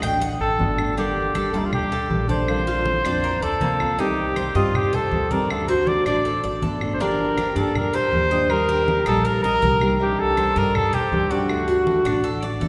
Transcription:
0.02 A1 A3 D4 G5, claves
0.20 F#5, muted nylon-string guitar stroke, high conga
0.39 A1 A4, high conga
0.59 G1 D3 A3 D4 F#4, high conga
0.78 A3 D4 F#4, high conga, claves
0.97 D3 G3 A#3 D4 G4 A4, high conga
1.16 high conga
1.34 G3 A#3 D4 A4, high conga, claves
1.53 D2 G3 A#3 D4 F4 A4 D5, high conga
1.58 D#4
1.64 F4
1.73 G4, high conga, low conga, claves
1.91 A4, muted nylon-string guitar stroke, high conga
2.10 A#1 G3 A#3 D4 A4, high conga
2.28 G3 A#3 D4 A4 C5 D5, high conga
2.48 D3 A#3 C4 F4, high conga, claves
2.67 F4, high conga
2.85 D3 A#3 C4 F4, high conga
3.04 F2 A#3 C4 D4 F4, claves
3.23 A#4, high conga
3.41 D2 A4 D5, muted nylon-string guitar stroke, high conga
3.60 C2 D3 A#3 C4 F4, high conga
3.80 A#3 C4 F4, high conga, claves
3.98 C3 D#3 G3 C4 D#4 G4, high conga
4.18 high conga
4.36 D#3 G3 C4 G4 C5, high conga, claves
4.55 G2 D#3 G3 C4 F4 G4 D#5, high conga
4.74 G4, high conga, low conga, claves
4.93 A4 C5, muted nylon-string guitar stroke, high conga, low conga
5.11 D2 D#3 G3 C4 G4, high conga
5.31 D#3 G3 C4 G4 A#4 D5, high conga
5.50 D3 A3 D4 F#4 A4, high conga, claves
5.68 F#4 C5, high conga
5.87 D3 A3 D4 F#4 D5, high conga
6.06 A1 A3 D4 F#4 D5, claves
6.25 A4, high conga
6.43 A1 D5, muted nylon-string guitar stroke, high conga
6.62 G1 D3 A3 D4 F#4 A4, high conga
6.81 A3 D4 F#4, high conga, claves
6.94 C5
6.99 D3 F3 A#3 D4 G4 A#4, high conga
7.20 high conga
7.36 F3 A#3 D4 G4, high conga, claves
7.55 G2 F3 A#3 D4 G4 A4 D5, high conga
7.75 A#4, high conga, low conga, claves
7.94 G4 C5, muted nylon-string guitar stroke, high conga
8.12 D#2 F3 A#3 D4 G4, high conga
8.31 F3 A#3 D4 G4 D#5
8.50 D#3 G3 A#3 D#4 G4 A#4, high conga, claves
8.69 G4, high conga
8.87 G3 A#3 D#4 G4, high conga
9.06 A#1 G3 A#3 D#4 G4 A4, claves
9.25 A#4, high conga
9.43 A#1 A#4 D#5, muted nylon-string guitar stroke, high conga
9.62 C2 G3 A#3 D#4 G4 A#4, high conga
9.81 G3 A#3 D#4 G4, high conga, claves
9.99 C3 D#3 G3 D4 G4, high conga
10.19 A4, high conga
10.37 D#3 G3 D4 G4 C5, high conga, claves
10.55 G2 D#3 G3 G4 A#4 D#5, high conga
10.75 A4, high conga, low conga, claves
10.93 G4 C5, muted nylon-string guitar stroke, high conga, low conga
11.11 D2 D#3 G3 D4 G4, high conga
11.30 D#3 G3 D4 F#4 G4 D5
11.48 D3 A3 D4 F#4, high conga, claves
11.68 F#4, high conga
11.86 D3 A3 D4 F#4, high conga
12.05 A1 A3 D4 F#4, claves
12.24 A4, high conga
12.43 D5, muted nylon-string guitar stroke, high conga
12.60 G1 D3 A3 D4 F#4 A4, high conga

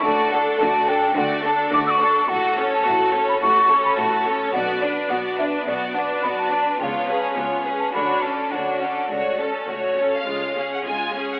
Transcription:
0.03 D2 D3 A3 F#4 D5 A5
0.31 D4 A4 F#5
0.59 D2 D3 A3 F#4 D5 A5
0.87 D4 A4 G5
1.15 D2 D3 A3 F#4 D5 F#5
1.43 D4 A4 A5
1.72 D2 D3 A3 F#4 D5 D6
1.87 E6
1.91 C#6
2.00 D4 A4
2.29 A1 A2 A3 F#4 A4 F#5
2.57 C#4 A4 C#5
2.73 A5
2.85 A1 A2 A3 F#4 A4
3.13 C#4 A4 C#5
3.29 B5
3.41 A1 A2 A3 F#4 A4 C#6
3.70 C#4 A4 C#5
3.85 B5
3.97 A1 A2 A3 F#4 A4 A5
4.25 C#4 A4 C#5
4.53 B1 B2 B3 F#4 D5 F#5
4.81 D4 B4 D5
5.10 B1 B2 B3 F#4 D5 F#5
5.39 D4 B4 E5
5.66 B1 B2 B3 F#4 D5
5.94 D4 B4 F#5
6.23 B1 B2 B3 F#4 D5 B5
6.38 A5
6.51 D4 B4
6.79 C#2 C#3 B3 F4 C#5 G5
6.84 F5
7.09 C#4 G#4 B4
7.23 G#5
7.37 C#2 C#3 B3 F4 C#5
7.65 C#4 G#4 B4
7.80 A5
7.93 D2 D3 D4 F#4 C#5 B5
8.22 C#4 D4 A4 A5
8.51 D2 D3 D4 F#4 C#5 F#5
8.80 C#4 D4 A4 F#5
9.10 C#2 C#3 A3 F#4 C#5 D5
9.39 C#4 A4
9.68 C#2 C#3 A3 F#4 C#5
9.98 C#4 A4
10.14 F5
10.27 C#2 C#3 G#3 F4
10.56 C#4 G#4
10.73 F#5
10.85 C#2 C#3 G#3 F4 G#5
11.15 C#4 G#4
11.32 F#5

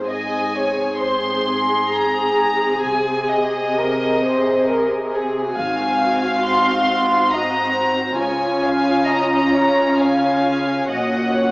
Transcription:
Already playing: G#2
0.06 C4 G#4 D#5 G#5
0.56 C#5
1.00 C5 C6
1.48 G#4
1.92 A#5
2.84 C2 C3 G#5
3.30 D#5
3.77 A#4
4.24 C5
4.69 A#4
5.14 G#4
5.54 G#1 G#2 C4 F#4 F5 G#5
6.43 C6
7.32 D#5 A#5
7.76 C5
8.18 C#2 C#3 C#4 F4 C#5 G#5
8.64 F5
9.08 D#5 A#5
9.55 C#5
9.99 F5 G#5
10.89 A#1 A#2 F#4 D#5 F#5
11.35 C#5

